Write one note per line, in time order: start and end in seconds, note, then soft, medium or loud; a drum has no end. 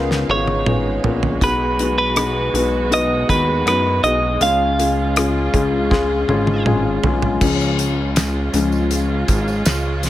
0.00 0.25 C#2 medium
0.00 1.38 C#3 medium
0.00 1.43 C#3 soft
0.00 7.37 G#3 medium
0.00 0.30 B3 medium
0.00 4.37 B3 medium
0.00 0.31 C#4 medium
0.00 1.38 D#4 medium
0.00 0.31 F4 medium
0.00 0.31 G#4 medium
0.00 0.27 A#4 loud
0.00 1.37 F5 medium
0.11 snare soft
0.29 1.00 G#1 medium
0.29 0.65 B3 medium
0.29 0.65 C#4 medium
0.29 0.65 F4 medium
0.29 0.65 G#4 medium
0.29 1.43 C#5 medium
0.47 high tom medium
0.66 1.02 B3 medium
0.66 1.03 C#4 medium
0.66 1.03 F4 medium
0.66 1.03 G#4 medium
0.66 mid tom medium
1.04 1.39 A#1 loud
1.04 1.40 B3 medium
1.04 1.40 C#4 medium
1.04 1.40 F4 medium
1.04 1.40 A#4 medium
1.04 floor tom medium
1.23 floor tom medium
1.41 2.50 B1 medium
1.41 2.50 B2 medium
1.41 1.77 B3 medium
1.41 1.77 D#4 medium
1.41 1.77 F#4 medium
1.41 4.39 F#4 medium
1.41 1.77 G#4 medium
1.41 1.97 B4 medium
1.41 kick medium
1.41 closed hi-hat medium
1.79 2.14 B3 medium
1.79 2.15 D#4 medium
1.79 2.15 F#4 medium
1.79 2.15 G#4 medium
1.79 closed hi-hat medium
1.98 2.93 B4 medium
2.16 2.52 B3 medium
2.16 2.52 D#4 medium
2.16 2.52 F#4 medium
2.16 2.52 G#4 medium
2.16 cross-stick loud
2.16 closed hi-hat medium
2.54 3.25 B1 loud
2.54 2.89 B3 medium
2.54 2.89 D#4 medium
2.54 2.90 F#4 medium
2.54 2.90 B4 medium
2.54 closed hi-hat medium
2.91 3.27 B3 medium
2.91 3.27 D#4 medium
2.91 3.27 F#4 medium
2.91 3.27 B4 loud
2.91 3.27 D#5 loud
2.91 closed hi-hat medium
3.28 3.64 D#2 medium
3.28 3.64 B3 medium
3.28 3.64 D#4 medium
3.28 3.64 F#4 medium
3.28 3.64 G#4 medium
3.28 3.67 B4 medium
3.28 kick medium
3.28 closed hi-hat medium
3.65 4.01 F#2 medium
3.65 4.02 B3 medium
3.65 4.02 D#4 medium
3.65 4.02 F#4 medium
3.65 4.03 B4 medium
3.65 4.02 B4 medium
3.65 cross-stick loud
3.65 closed hi-hat medium
4.03 4.38 B1 medium
4.03 4.39 B3 medium
4.03 4.40 D#4 medium
4.03 4.40 F#4 medium
4.03 4.40 G#4 medium
4.03 4.42 D#5 loud
4.03 closed hi-hat medium
4.40 5.49 C#2 medium
4.40 5.50 C#3 medium
4.40 4.76 G#3 medium
4.40 4.77 C#4 medium
4.40 7.39 C#4 medium
4.40 4.77 F4 medium
4.40 7.39 F4 medium
4.40 4.77 G#4 medium
4.40 6.63 F5 medium
4.40 closed hi-hat medium
4.78 5.14 G#3 medium
4.78 5.14 C#4 medium
4.78 5.14 F4 medium
4.78 5.14 G#4 medium
4.78 closed hi-hat medium
5.16 5.51 G#3 medium
5.16 5.52 C#4 medium
5.16 5.52 F4 medium
5.16 5.52 G#4 medium
5.16 cross-stick loud
5.16 closed hi-hat loud
5.53 6.25 C#2 medium
5.53 5.89 G#3 medium
5.53 5.89 C#4 medium
5.53 5.89 F4 medium
5.53 5.89 G#4 medium
5.53 kick medium
5.53 closed hi-hat medium
5.91 6.27 G#3 loud
5.91 6.27 C#4 medium
5.91 6.27 F4 medium
5.91 6.27 G#4 loud
5.91 kick medium
5.91 snare medium
6.28 6.99 G#1 medium
6.28 6.64 G#3 medium
6.28 6.64 C#4 medium
6.28 6.65 F4 medium
6.28 6.65 G#4 loud
6.28 high tom medium
6.47 high tom medium
6.66 7.02 G#3 medium
6.66 7.02 C#4 medium
6.66 7.02 F4 medium
6.66 7.02 G#4 loud
6.66 mid tom medium
7.03 7.38 B1 medium
7.03 7.39 G#3 medium
7.03 7.39 C#4 medium
7.03 7.39 F4 medium
7.03 7.40 G#4 medium
7.03 floor tom medium
7.22 floor tom medium
7.41 8.50 C#2 medium
7.41 7.91 F3 soft
7.41 7.91 G#3 soft
7.41 10.10 G#3 medium
7.41 7.91 C#4 medium
7.41 10.10 C#4 medium
7.41 10.10 F4 medium
7.41 kick medium
7.41 crash medium
7.41 tambourine soft
7.61 tambourine soft
7.79 closed hi-hat medium
7.79 tambourine soft
8.16 snare loud
8.16 closed hi-hat loud
8.16 tambourine medium
8.53 9.24 C#2 medium
8.53 8.87 F3 soft
8.53 8.88 G#3 soft
8.53 8.88 C#4 soft
8.53 closed hi-hat medium
8.53 tambourine medium
8.72 tambourine soft
8.91 closed hi-hat medium
8.91 tambourine soft
9.28 9.63 G#1 loud
9.28 kick medium
9.28 closed hi-hat medium
9.28 tambourine soft
9.48 tambourine soft
9.66 10.04 C#2 medium
9.66 snare loud
9.66 closed hi-hat medium
9.66 tambourine medium
10.03 10.10 B1 medium
10.03 snare soft
10.03 closed hi-hat medium
10.03 tambourine soft